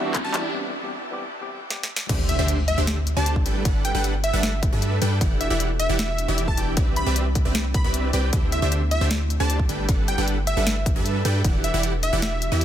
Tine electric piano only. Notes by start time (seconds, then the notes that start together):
0.04 E3 G3 B3 D4 F#4
0.23 E3 G3 B3 D4 F#4
0.53 E3 G3 B3 C4 G4
0.82 E3 G3 B3 C4 G4
1.11 E3 G3 B3 C4 G4
1.40 E3 G3 B3 C4 G4
1.70 E3 G3 B3 C4 G4